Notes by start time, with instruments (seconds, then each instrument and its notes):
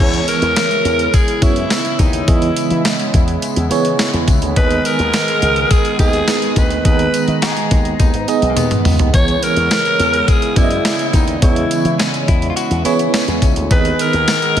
0.00 slap bass E2, analog synth pad C#3 G#3 B3 E4, fm electric piano E3 B3 E4 G#4 C#5, alto saxophone C#5
0.13 closed hi-hat
0.28 alto saxophone A#4, closed hi-hat, tambourine
0.42 slap bass E2, closed hi-hat
0.56 snare, closed hi-hat, tambourine
0.71 closed hi-hat
0.85 slap bass E2, closed hi-hat, tambourine
0.99 closed hi-hat
1.13 alto saxophone G#4, kick, closed hi-hat, tambourine
1.28 closed hi-hat
1.41 slap bass F#2, fm electric piano B3 E4 G#4 C#5, alto saxophone E4, kick, closed hi-hat, tambourine
1.56 closed hi-hat
1.70 snare, closed hi-hat, tambourine
1.85 closed hi-hat
1.99 slap bass D#2, alto saxophone D#4, kick, closed hi-hat, tambourine
2.13 closed hi-hat
2.27 slap bass E2, fm electric piano E3 B3 E4 G#4 D#5, alto saxophone E4, kick, closed hi-hat
2.42 closed hi-hat
2.56 closed hi-hat, tambourine
2.70 slap bass E3, closed hi-hat
2.85 snare, closed hi-hat, tambourine
3.00 closed hi-hat
3.14 slap bass E2, kick, closed hi-hat, tambourine
3.28 closed hi-hat
3.42 closed hi-hat, tambourine
3.56 slap bass E2, closed hi-hat
3.70 slap bass E3, fm electric piano B3 E4 G#4 C#5, closed hi-hat, tambourine
3.85 closed hi-hat
3.99 snare, closed hi-hat, tambourine
4.13 slap bass E2, closed hi-hat
4.28 slap bass C#2, kick, closed hi-hat, tambourine
4.42 slap bass D2, closed hi-hat
4.56 slap bass D#2, analog synth pad D#3 G#4, fm electric piano D#3 B3 D#4 G#4 D#5, alto saxophone B4, kick, closed hi-hat
4.71 closed hi-hat
4.85 alto saxophone A#4, closed hi-hat, tambourine
4.99 slap bass D#2, closed hi-hat
5.13 snare, closed hi-hat, tambourine
5.28 closed hi-hat
5.42 slap bass C#2, closed hi-hat
5.56 closed hi-hat
5.71 alto saxophone G#4, kick, closed hi-hat, tambourine
5.85 closed hi-hat
5.99 slap bass D#2, fm electric piano B3 D#4 G#4 D#5, alto saxophone G#4, kick, closed hi-hat, tambourine
6.13 closed hi-hat
6.28 snare, closed hi-hat, tambourine
6.42 closed hi-hat
6.56 slap bass D2, alto saxophone B4, kick, closed hi-hat, tambourine
6.70 closed hi-hat
6.85 slap bass D#2, fm electric piano D#3 B3 D#4 G#4 D#5, alto saxophone B4, analog synth pad A#5, kick, closed hi-hat, tambourine
6.99 closed hi-hat
7.14 closed hi-hat, tambourine
7.28 slap bass D#3, closed hi-hat
7.42 clean electric guitar G#4, snare, closed hi-hat, tambourine
7.57 closed hi-hat
7.71 slap bass D#2, kick, closed hi-hat, tambourine
7.85 closed hi-hat
7.99 slap bass D#2, clean electric guitar D#4, kick, closed hi-hat, tambourine
8.14 slap bass G#2, closed hi-hat
8.28 fm electric piano B3 D#4 G#4 D#5, closed hi-hat, tambourine
8.42 slap bass B1, closed hi-hat
8.50 clean electric guitar A#3
8.57 slap bass D#2, clean electric guitar B3, closed hi-hat, high tom, tambourine
8.71 closed hi-hat, mid tom
8.85 slap bass C#2, mid tom, open hi-hat, tambourine
8.99 slap bass D#2, closed hi-hat, floor tom
9.13 slap bass E2, analog synth pad C#3 E4, fm electric piano E3 B3 E4 G#4 C#5, alto saxophone C#5, kick, closed hi-hat
9.28 closed hi-hat
9.42 alto saxophone A#4, closed hi-hat, tambourine
9.56 slap bass E2, closed hi-hat
9.71 snare, closed hi-hat, tambourine
9.85 closed hi-hat
10.00 slap bass E2, closed hi-hat, tambourine
10.14 closed hi-hat
10.28 alto saxophone G#4, kick, closed hi-hat, tambourine
10.42 closed hi-hat
10.56 slap bass F#2, fm electric piano B3 E4 G#4 D5, alto saxophone E4, kick, closed hi-hat, tambourine
10.64 fm electric piano D#5
10.71 closed hi-hat
10.85 snare, closed hi-hat, tambourine
10.99 closed hi-hat
11.13 slap bass D#2, alto saxophone D#4, kick, closed hi-hat, tambourine
11.28 closed hi-hat
11.42 slap bass E2, fm electric piano E3 B3 E4 G#4 C#5, alto saxophone E4, kick, closed hi-hat, tambourine
11.56 closed hi-hat
11.71 closed hi-hat, tambourine
11.85 slap bass E3, closed hi-hat
11.99 clean electric guitar C#4, snare, closed hi-hat, tambourine
12.14 closed hi-hat
12.28 slap bass E2, clean electric guitar E4, kick, closed hi-hat
12.42 closed hi-hat
12.50 clean electric guitar F4
12.56 clean electric guitar F#4, closed hi-hat, tambourine
12.71 slap bass E2, closed hi-hat
12.85 slap bass E3, fm electric piano B3 E4 G#4 C#5, clean electric guitar E4, closed hi-hat, tambourine
12.99 closed hi-hat
13.14 clean electric guitar C#4, snare, closed hi-hat, tambourine
13.28 slap bass E2, closed hi-hat
13.42 slap bass C#2, kick, closed hi-hat, tambourine
13.56 slap bass D2, closed hi-hat
13.70 slap bass D#2, fm electric piano D#3 B3 D#4 G#4 D#5, analog synth pad D#3 G#3 B3 G#4, alto saxophone B4, kick, closed hi-hat, tambourine
13.85 closed hi-hat
13.99 alto saxophone A#4, closed hi-hat, tambourine
14.13 slap bass D#2, closed hi-hat
14.28 snare, closed hi-hat, tambourine
14.42 closed hi-hat
14.57 slap bass C#2, closed hi-hat